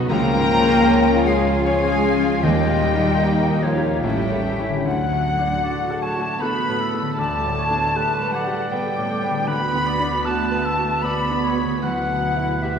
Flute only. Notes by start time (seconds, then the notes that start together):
0.10 G5
1.27 F5
1.65 F5
2.43 D#5
3.63 C#5
4.04 E5
4.85 F#5
6.03 A5
6.40 B5
7.18 A5
8.32 F#5
8.71 G5
9.47 B5
10.25 A5
11.02 B5
11.81 F#5
12.62 E5